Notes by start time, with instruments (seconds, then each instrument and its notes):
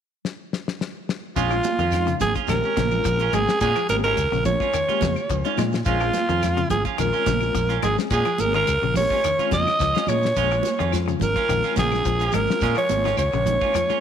0.25 snare
0.53 snare
0.68 snare
0.81 snare
1.09 snare
1.36 fingered electric bass A#1, clean electric guitar G#3 C#4 F4, reed electric piano G#3 C4 C#4 F4, alto saxophone F4, kick, closed hi-hat, shekere
1.51 clean electric guitar F3, claves, shekere
1.64 closed hi-hat, high conga, shekere
1.79 fingered electric bass F2, clean electric guitar D#3 C#4 F4, closed hi-hat, shekere
1.91 reed electric piano G#3 C4 C#4 D#4, snare, closed hi-hat, claves, shekere
2.07 clean electric guitar C#3, closed hi-hat, shekere
2.20 fingered electric bass G#1, alto saxophone G#4, kick, closed hi-hat, high conga, low conga, shekere
2.35 clean electric guitar C#4 F4, kick, closed hi-hat, shekere
2.48 fingered electric bass A#1, clean electric guitar D#3, reed electric piano G#3 C4 C#4 G4, alto saxophone A#4, snare, closed hi-hat, high conga, claves, shekere
2.63 clean electric guitar C#4, shekere
2.76 fingered electric bass A#1, clean electric guitar C#3, kick, snare, closed hi-hat, high conga, shekere
2.91 reed electric piano G#3 C4 C#4 F4, low conga, claves, shekere
3.04 fingered electric bass A#1, clean electric guitar F3, kick, closed hi-hat, shekere
3.19 clean electric guitar C#4 F4, closed hi-hat, shekere
3.33 fingered electric bass G#1, clean electric guitar G#3, alto saxophone G#4, closed hi-hat, high conga, low conga, claves, shekere
3.48 reed electric piano G#3 C4 C#4 G#4, snare, shekere
3.61 fingered electric bass A#2, clean electric guitar G#3 C#4 F4, alto saxophone G#4, kick, closed hi-hat, shekere
3.76 clean electric guitar F3, closed hi-hat, claves, shekere
3.89 fingered electric bass G#1, reed electric piano G#3 C4 C#4 G4, alto saxophone A#4, snare, closed hi-hat, high conga, shekere
4.04 clean electric guitar D#3 C#4 F4, alto saxophone A#4, closed hi-hat, shekere
4.17 fingered electric bass C#2, closed hi-hat, claves, shekere
4.32 fingered electric bass A#1, clean electric guitar C#3, shekere
4.45 reed electric piano G#3 C4 C#4 F4, alto saxophone C#5, kick, closed hi-hat, high conga, low conga, shekere
4.60 clean electric guitar C#4 F4, kick, shekere
4.74 clean electric guitar D#3, closed hi-hat, claves, shekere
4.88 reed electric piano G#3 A#3 C#4 G4, clean electric guitar C#4 F4, muted fingered electric bass stroke, closed hi-hat, shekere
5.01 fingered electric bass F2, clean electric guitar C#3, kick, snare, closed hi-hat, high conga, shekere
5.16 high conga, claves, shekere
5.29 fingered electric bass C#2, clean electric guitar F3, kick, closed hi-hat, shekere
5.45 reed electric piano G#3 C4 C#4 D#4, clean electric guitar C#4 F4, closed hi-hat, shekere
5.58 fingered electric bass A#2, clean electric guitar G#3, snare, closed hi-hat, high conga, low conga, claves, shekere
5.73 snare, shekere
5.85 fingered electric bass A#1, clean electric guitar G#3 C#4 F4, reed electric piano G#3 C4 C#4 G#4, alto saxophone F4, kick, closed hi-hat, shekere
6.00 clean electric guitar F3, claves, shekere
6.14 snare, closed hi-hat, high conga, shekere
6.28 fingered electric bass F2, clean electric guitar D#3 C#4 F4, closed hi-hat, shekere
6.43 reed electric piano G#3 C4 C#4 F4, snare, closed hi-hat, claves, shekere
6.57 clean electric guitar C#3, closed hi-hat, shekere
6.70 fingered electric bass G#1, alto saxophone G#4, kick, closed hi-hat, high conga, low conga, shekere
6.85 clean electric guitar C#4 F4, kick, closed hi-hat, shekere
6.98 fingered electric bass A#1, clean electric guitar D#3, reed electric piano G#3 C4 C#4 F4, alto saxophone A#4, closed hi-hat, claves, shekere
7.13 clean electric guitar C#4 F4, shekere
7.26 fingered electric bass A#1, clean electric guitar C#3, kick, snare, closed hi-hat, high conga, shekere
7.41 reed electric piano G#3 C4 C#4 F4, high conga, claves, shekere
7.55 fingered electric bass A#1, clean electric guitar F3, kick, closed hi-hat, shekere
7.69 clean electric guitar C#4 F4, closed hi-hat, shekere
7.82 fingered electric bass G#1, clean electric guitar G#3, alto saxophone G#4, closed hi-hat, high conga, low conga, claves, shekere
7.98 reed electric piano G#3 C4 C#4 G#4, snare, shekere
8.10 fingered electric bass A#2, clean electric guitar G#3 C#4 F4, alto saxophone G#4, kick, closed hi-hat, shekere
8.25 clean electric guitar F3, closed hi-hat, claves, shekere
8.38 fingered electric bass G#1, reed electric piano G#3 C4 C#4 G#4, alto saxophone A#4, closed hi-hat, high conga, shekere
8.54 clean electric guitar D#3 C#4 F4, alto saxophone A#4, closed hi-hat, shekere
8.67 fingered electric bass C#2, closed hi-hat, claves, shekere
8.82 fingered electric bass A#1, clean electric guitar C#3, shekere
8.94 reed electric piano G#3 C4 C#4 G4, alto saxophone C#5, kick, open hi-hat, high conga, low conga, shekere
9.10 clean electric guitar C#4 F4, kick, shekere
9.24 clean electric guitar D#3, closed hi-hat, claves, shekere
9.39 reed electric piano G#3 C4 C#4 F4, clean electric guitar C#4 F4, muted fingered electric bass stroke, closed hi-hat, shekere
9.51 fingered electric bass F2, clean electric guitar C#3, alto saxophone D#5, kick, snare, closed hi-hat, high conga, shekere
9.65 snare, low conga, claves, shekere
9.80 fingered electric bass C#2, clean electric guitar F3, kick, snare, closed hi-hat, shekere
9.94 reed electric piano G#3 C4 C#4 F4, clean electric guitar C#4 F4, snare, closed hi-hat, shekere
10.07 fingered electric bass A#2, clean electric guitar G#3, alto saxophone C#5, closed hi-hat, high conga, low conga, claves, shekere
10.23 snare, shekere
10.36 fingered electric bass A#1, clean electric guitar G#3 C#4 F4, reed electric piano G#3 A#3 C#4 F4, kick, closed hi-hat, shekere
10.51 clean electric guitar F3, claves, shekere
10.63 snare, closed hi-hat, high conga, shekere
10.79 fingered electric bass F2, clean electric guitar D#3 C#4 F4, closed hi-hat, shekere
10.92 reed electric piano G#3 C4 C#4 F4, snare, closed hi-hat, claves, shekere
11.08 clean electric guitar C#3, closed hi-hat, shekere
11.20 fingered electric bass G#1, alto saxophone A#4, kick, closed hi-hat, high conga, low conga, shekere
11.36 clean electric guitar C#4 F4, kick, closed hi-hat, shekere
11.49 fingered electric bass A#1, clean electric guitar D#3, reed electric piano G#3 C4 C#4 F4, closed hi-hat, claves, shekere
11.64 clean electric guitar C#4 F4, shekere
11.76 fingered electric bass A#1, clean electric guitar C#3, alto saxophone G#4, kick, snare, closed hi-hat, high conga, shekere
11.91 reed electric piano G#3 C4 C#4 F4, snare, low conga, claves, shekere
12.05 fingered electric bass A#1, clean electric guitar F3, kick, closed hi-hat, shekere
12.20 clean electric guitar C#4 F4, closed hi-hat, shekere
12.32 fingered electric bass G#1, clean electric guitar G#3, alto saxophone A#4, closed hi-hat, high conga, low conga, claves, shekere
12.47 reed electric piano G#3 C4 C#4 F4, snare, shekere
12.61 fingered electric bass A#2, clean electric guitar G#3 C#4 F4, kick, snare, closed hi-hat, shekere
12.75 clean electric guitar F3, alto saxophone C#5, closed hi-hat, claves, shekere
12.89 fingered electric bass G#1, reed electric piano G#3 C4 C#4 F4, closed hi-hat, high conga, shekere
13.04 clean electric guitar D#3 C#4 F4, snare, closed hi-hat, shekere
13.18 fingered electric bass C#2, alto saxophone C#5, closed hi-hat, claves, shekere
13.33 fingered electric bass A#1, clean electric guitar C#3, shekere
13.46 reed electric piano G#3 C4 C#4 D#4, kick, closed hi-hat, high conga, low conga, shekere
13.61 clean electric guitar C#4 F4, kick, shekere
13.74 clean electric guitar F3, closed hi-hat, high conga, claves, shekere
13.89 reed electric piano G#3 A#3 C#4 F4, clean electric guitar C#4 F4, muted fingered electric bass stroke, closed hi-hat, shekere